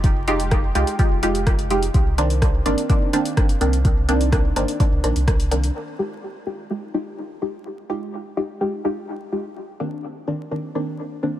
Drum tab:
HH |x-xxx-xxx-xxxxxx|x-xxx-xxx-xxxxxx|x-xxx-xxx-xxxxxx|----------------|
SD |----r-------r---|----r-------r---|----r-------r---|----------------|
BD |o---o---o---o---|o---o---o---o---|o---o---o---o---|----------------|

HH |----------------|----------------|
SD |----------------|----------------|
BD |----------------|----------------|